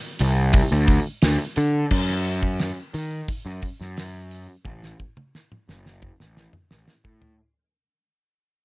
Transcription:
0.19 0.60 C2 medium
0.19 open hi-hat medium
0.53 kick loud
0.53 open hi-hat medium
0.72 0.98 D2 medium
0.87 kick medium
0.87 open hi-hat medium
1.22 1.36 D2 medium
1.22 snare loud
1.22 open hi-hat medium
1.56 1.84 D3 medium
1.56 open hi-hat medium
1.91 2.71 F#2 loud
1.91 kick loud
1.91 crash loud
2.09 snare soft
2.25 open hi-hat medium
2.43 kick medium
2.59 snare loud
2.59 open hi-hat medium
2.94 3.21 D#3 medium
2.94 open hi-hat medium
3.28 kick loud
3.28 open hi-hat medium
3.46 3.59 F#2 loud
3.62 kick medium
3.62 open hi-hat medium
3.81 4.47 F#2 medium
3.81 snare soft
3.97 snare loud
3.97 open hi-hat loud
4.31 open hi-hat medium
4.65 4.92 A1 loud
4.65 kick loud
4.65 high tom medium
4.83 snare medium
5.00 kick medium
5.17 high tom medium
5.35 snare medium
5.52 mid tom medium
5.68 6.08 F#1 medium
5.68 snare medium
5.86 snare medium
6.02 kick loud
6.02 mid tom medium
6.20 6.47 A1 medium
6.20 snare medium
6.37 snare loud
6.53 mid tom medium
6.71 6.85 A1 medium
6.71 snare loud
6.88 snare medium
7.05 7.32 A2 medium
7.05 kick loud
7.22 floor tom medium

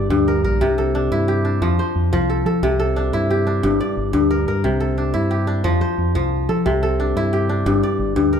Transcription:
0.00 0.94 D4 medium
0.00 0.66 E4 medium
0.00 0.67 G4 medium
0.00 0.88 D5 medium
0.10 0.42 D2 medium
0.10 0.66 G2 medium
0.28 0.44 A#4 medium
0.43 0.59 A#1 medium
0.43 0.84 A#4 medium
0.60 1.08 C2 medium
0.60 1.67 C3 medium
0.78 2.10 A4 medium
0.95 1.44 D4 medium
1.11 1.59 G2 medium
1.11 1.68 E4 medium
1.28 2.69 G4 medium
1.45 2.96 D4 medium
1.61 1.77 F2 loud
1.61 2.11 F3 medium
1.79 2.98 C5 medium
1.95 2.11 F2 medium
2.12 2.44 C2 medium
2.12 2.68 F3 medium
2.30 2.46 A4 medium
2.45 2.61 F3 medium
2.45 2.79 A4 medium
2.62 3.10 C2 medium
2.62 3.69 C3 medium
2.80 4.11 A4 medium
2.96 3.46 D4 medium
3.12 3.60 G2 medium
3.12 4.70 E4 medium
3.30 4.72 G4 medium
3.47 4.97 D4 medium
3.63 3.79 G1 loud
3.63 4.12 G2 medium
3.80 4.91 D5 medium
3.97 4.13 G1 medium
4.13 4.45 D2 medium
4.13 4.69 G2 medium
4.31 4.47 A#4 medium
4.47 4.63 G2 loud
4.47 4.86 A#4 medium
4.64 5.12 C2 medium
4.64 5.70 C3 medium
4.80 6.12 A4 medium
4.98 5.47 D4 medium
5.14 5.62 G2 medium
5.14 5.70 E4 medium
5.31 6.72 G4 medium
5.47 6.99 D4 medium
5.64 5.80 F2 loud
5.64 6.14 F3 medium
5.81 7.00 C5 medium
5.98 6.14 F2 medium
6.15 6.47 C2 medium
6.15 6.70 F3 medium
6.49 6.64 F3 loud
6.49 6.82 A4 medium
6.66 7.13 C2 loud
6.66 7.71 C3 medium
6.83 8.14 A4 medium
7.00 7.49 D4 medium
7.16 7.63 G2 medium
7.16 8.40 E4 medium
7.33 8.40 G4 medium
7.49 8.40 D4 medium
7.66 7.82 G1 loud
7.66 8.15 G2 medium
7.83 8.40 D5 medium
7.99 8.15 G1 medium
8.16 8.40 D2 medium
8.16 8.40 G2 medium
8.33 8.40 A#4 medium

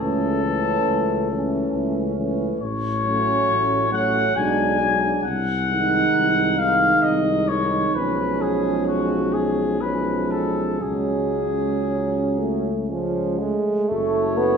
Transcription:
0.00 0.77 C#2 medium
0.00 0.43 E3 soft
0.00 0.44 A3 soft
0.00 0.44 C#4 soft
0.00 1.70 A4 medium
0.44 1.29 E3 soft
0.44 1.29 A3 soft
0.44 1.30 C#4 soft
0.88 1.64 C#2 soft
1.31 2.16 E3 soft
1.31 2.16 A3 soft
1.31 2.16 C#4 soft
1.74 2.50 C#2 medium
2.17 2.60 E3 soft
2.17 2.60 A3 soft
2.17 2.60 C#4 soft
2.60 3.38 A1 medium
2.60 3.88 C#5 medium
3.03 3.90 F#3 soft
3.03 3.91 A3 soft
3.03 3.91 C#4 soft
3.48 4.26 A1 medium
3.92 4.35 F#3 soft
3.92 4.36 A3 soft
3.92 4.36 C#4 soft
3.92 4.38 F#5 medium
4.35 5.14 B1 medium
4.35 4.79 F#3 soft
4.35 4.79 G#3 soft
4.35 4.79 D4 soft
4.35 5.23 G#5 medium
4.80 5.23 F#3 soft
4.80 5.24 G#3 soft
4.80 5.24 D4 soft
5.24 6.03 C2 medium
5.24 6.60 F#5 medium
5.69 6.56 D#3 soft
5.69 6.57 G#3 soft
5.69 6.57 D#4 soft
6.14 6.93 C2 medium
6.57 7.47 D#3 soft
6.57 7.47 G#3 soft
6.57 7.48 D#4 soft
6.57 7.04 F5 medium
7.03 7.84 C2 medium
7.03 7.50 D#5 medium
7.48 7.94 D#3 soft
7.48 7.94 G#3 soft
7.48 7.95 D#4 soft
7.48 7.97 C#5 medium
7.94 10.78 B1 soft
7.94 9.77 F3 soft
7.94 9.78 G#3 soft
7.94 9.78 C#4 medium
7.94 8.43 B4 medium
8.42 8.87 G#4 medium
8.87 9.35 F#4 medium
9.33 9.83 G#4 medium
9.81 10.80 F3 soft
9.81 10.80 G#3 soft
9.81 10.81 C#4 soft
9.81 10.33 B4 medium
10.31 10.83 A4 medium
10.81 13.52 C#2 soft
10.81 12.72 F#3 soft
10.81 11.74 G#3 soft
10.81 12.72 C#4 soft
10.81 12.89 G#4 medium
11.87 12.40 C#4 medium
12.39 12.92 A3 soft
12.89 13.42 F3 medium
12.89 13.44 G#3 soft
12.89 13.55 C#4 soft
13.40 13.90 G#3 medium
13.40 13.91 A3 soft
13.89 14.57 F#1 medium
13.89 14.39 A3 medium
13.89 14.57 F#4 soft
13.89 14.57 A4 medium
13.89 14.57 C#5 soft
14.38 14.57 B3 medium

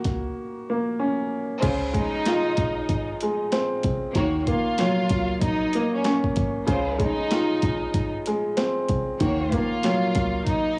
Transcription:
0.00 1.63 D#3 medium
0.00 0.68 A#3 medium
0.00 1.63 F#4 medium
0.04 0.30 C#2 medium
0.04 kick loud
0.04 snare soft
0.04 closed hi-hat medium
0.70 1.64 A#3 medium
1.00 1.63 C#4 medium
1.61 2.03 C#2 loud
1.61 4.15 C#3 loud
1.61 1.88 G#3 medium
1.61 1.88 F4 medium
1.61 1.88 C5 loud
1.61 kick loud
1.61 closed hi-hat medium
1.61 crash loud
1.93 3.21 G#3 medium
1.93 3.05 D#4 loud
1.93 3.05 D#5 medium
1.93 kick medium
1.93 closed hi-hat medium
2.25 4.16 F4 loud
2.25 snare loud
2.25 closed hi-hat loud
2.57 2.82 A#1 medium
2.57 kick loud
2.57 closed hi-hat medium
2.89 3.14 G#1 loud
2.89 kick loud
2.89 closed hi-hat loud
3.21 4.16 G#3 medium
3.21 closed hi-hat medium
3.52 4.15 C4 medium
3.52 snare loud
3.52 closed hi-hat medium
3.83 4.00 C2 medium
3.83 kick medium
3.83 closed hi-hat medium
4.15 4.56 D#2 loud
4.15 6.68 D#3 medium
4.15 4.43 A#3 medium
4.15 4.42 F#4 loud
4.15 4.42 C#5 loud
4.15 kick loud
4.15 closed hi-hat medium
4.46 5.74 A#3 medium
4.46 5.37 F4 medium
4.46 5.38 F5 medium
4.46 kick medium
4.46 closed hi-hat medium
4.78 6.69 F#3 medium
4.78 snare loud
4.78 closed hi-hat loud
5.09 5.35 C#2 medium
5.09 kick loud
5.09 snare soft
5.09 closed hi-hat medium
5.41 5.66 A#1 medium
5.41 5.90 D#4 medium
5.41 5.91 D#5 medium
5.41 kick loud
5.41 closed hi-hat medium
5.73 6.69 A#3 medium
5.73 closed hi-hat medium
5.94 6.04 C#4 medium
5.94 6.05 C#5 medium
6.04 6.68 C#4 medium
6.04 snare loud
6.04 closed hi-hat medium
6.24 kick medium
6.36 6.61 G#1 loud
6.36 kick loud
6.36 closed hi-hat medium
6.66 7.08 C#2 loud
6.66 9.20 C#3 medium
6.66 7.11 G#3 loud
6.66 7.11 F4 loud
6.66 7.11 C5 loud
6.66 kick loud
6.66 closed hi-hat medium
6.98 8.26 G#3 medium
6.98 8.11 D#4 medium
6.98 8.11 D#5 medium
6.98 kick loud
6.98 closed hi-hat medium
7.31 9.21 F4 loud
7.31 snare loud
7.31 closed hi-hat loud
7.62 7.88 A#1 loud
7.62 kick loud
7.62 closed hi-hat medium
7.94 8.19 G#1 medium
7.94 kick loud
7.94 closed hi-hat medium
8.26 9.21 G#3 medium
8.26 closed hi-hat medium
8.57 9.20 C4 medium
8.57 snare loud
8.57 closed hi-hat medium
8.88 9.05 C2 medium
8.88 kick loud
8.88 closed hi-hat medium
9.20 9.61 D#2 loud
9.20 10.79 D#3 medium
9.20 9.64 A#3 loud
9.20 9.64 F#4 loud
9.20 9.64 C#5 loud
9.20 kick loud
9.20 closed hi-hat medium
9.52 10.79 A#3 medium
9.52 10.43 F4 medium
9.52 10.44 F5 medium
9.52 kick medium
9.52 closed hi-hat medium
9.83 10.79 F#3 medium
9.83 snare loud
9.83 closed hi-hat loud
10.15 10.40 C#2 loud
10.15 kick loud
10.15 snare soft
10.15 closed hi-hat medium
10.47 10.79 D#4 medium
10.47 10.79 D#5 medium
10.47 kick loud
10.47 closed hi-hat medium

